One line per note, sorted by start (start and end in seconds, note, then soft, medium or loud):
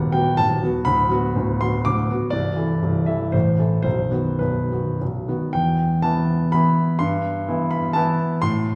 0.00 0.39 D#1 medium
0.00 0.39 D#2 medium
0.00 0.14 F#3 soft
0.00 0.13 B3 soft
0.00 0.14 F#4 soft
0.00 0.13 F#5 medium
0.12 0.36 F#3 soft
0.12 0.36 B3 soft
0.12 0.36 F#4 soft
0.12 0.38 G5 medium
0.37 0.62 D#1 medium
0.37 0.62 D#2 medium
0.37 0.86 A5 loud
0.63 0.84 F#3 soft
0.63 0.85 B3 soft
0.63 0.85 F#4 soft
0.85 1.10 D1 medium
0.85 1.10 D2 medium
0.85 1.61 B5 loud
1.10 1.34 F#3 soft
1.10 1.34 B3 soft
1.10 1.34 F#4 medium
1.36 1.61 D1 medium
1.36 1.61 D2 medium
1.61 1.83 F#3 soft
1.61 1.84 B3 soft
1.61 1.84 F#4 soft
1.61 1.85 C6 medium
1.85 2.09 D1 medium
1.85 2.09 D2 medium
1.85 2.32 D6 medium
2.09 2.30 F#3 soft
2.09 2.31 B3 soft
2.09 2.31 F#4 soft
2.30 2.56 C1 medium
2.30 2.56 C2 medium
2.30 3.07 D5 medium
2.56 2.79 E3 soft
2.56 2.80 E4 soft
2.56 2.80 A4 soft
2.82 3.08 C1 medium
2.82 3.08 C2 medium
3.06 3.31 E3 soft
3.06 3.31 E4 soft
3.06 3.32 A4 soft
3.06 3.33 E5 medium
3.32 3.59 A1 medium
3.32 3.59 A2 soft
3.32 3.81 C5 medium
3.59 3.83 E3 soft
3.59 3.83 E4 soft
3.59 3.83 A4 soft
3.82 4.12 B0 soft
3.82 4.12 B1 soft
3.82 4.41 C5 medium
4.11 4.39 D#3 soft
4.11 4.39 B3 soft
4.11 4.39 F#4 soft
4.39 4.71 B0 soft
4.39 4.71 B1 soft
4.39 4.99 B4 medium
4.72 4.98 D#3 soft
4.72 4.98 B3 soft
4.72 4.98 F#4 soft
5.01 5.27 B0 soft
5.01 5.27 B1 soft
5.28 5.51 D#3 soft
5.28 5.51 B3 soft
5.28 5.51 F#4 soft
5.53 6.03 E2 medium
5.53 6.04 G5 medium
6.02 6.49 E3 soft
6.02 6.50 B3 soft
6.02 6.50 E4 soft
6.02 6.53 A5 medium
6.52 6.97 E3 medium
6.52 6.97 B3 medium
6.52 6.97 E4 medium
6.52 7.00 B5 medium
6.99 7.46 G2 medium
6.99 7.71 C6 medium
7.49 7.93 E3 soft
7.49 7.93 B3 soft
7.49 7.93 E4 medium
7.71 7.95 B5 medium
7.93 8.38 E3 medium
7.93 8.39 B3 medium
7.93 8.38 E4 medium
7.93 8.41 A5 medium
8.42 8.75 A2 medium
8.42 8.75 C6 loud